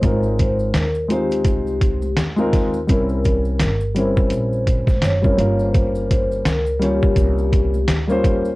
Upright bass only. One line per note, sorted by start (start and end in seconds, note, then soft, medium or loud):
0.03 0.71 G#1 loud
0.74 1.42 D#2 medium
1.45 2.13 C2 medium
2.17 2.85 D#2 medium
2.89 3.62 C2 loud
3.60 4.28 G1 medium
4.32 4.99 A#1 medium
5.03 5.37 F#1 medium
5.38 6.42 G1 medium
6.46 7.14 C#2 medium
7.16 7.85 C2 loud
7.89 8.56 D2 medium